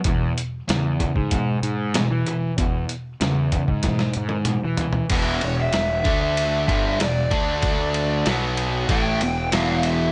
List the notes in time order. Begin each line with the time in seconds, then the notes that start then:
0.04 E2 B2, kick, closed hi-hat
0.38 closed hi-hat
0.68 E2 C#3, snare, closed hi-hat
1.00 E2 C#3, kick, closed hi-hat
1.16 G#2, kick
1.31 E2 B2, kick, closed hi-hat
1.63 G#2, closed hi-hat
1.94 E2 B2, snare, closed hi-hat
2.11 E3
2.26 E2 B2, closed hi-hat
2.58 E2 B2, kick, closed hi-hat
2.89 closed hi-hat
3.21 E2 C#3, snare, closed hi-hat
3.52 E2 C#3, kick, closed hi-hat
3.68 G#2, kick
3.83 E2 B2, kick, snare, closed hi-hat
3.99 snare
4.13 G#2, closed hi-hat
4.29 high tom
4.45 E2 B2, closed hi-hat, mid tom
4.65 E3
4.77 E2 B2, closed hi-hat, floor tom
4.93 floor tom
5.10 E1 E2 B2 E3, kick, crash, ride
5.41 E1 E2 B2 C#5, ride
5.60 E5
5.73 E1 E2 B2, snare, ride
6.04 D2 D3 A3 D4, kick, ride
6.21 E5
6.37 ride
6.67 G1 G2 D3 G3, kick, ride
7.00 E1 E2 B2 D5, snare, ride
7.31 D2 D3 A3 D4, kick, ride
7.62 kick, ride
7.94 ride
8.26 B1 B2 F#3 B3, snare, ride
8.57 ride
8.88 A1 A2 E3 A3 G5, kick, ride
9.21 E1 E2 B2, ride
9.52 E1 E2 B2 E3, snare, ride
9.57 F5
9.83 E5, ride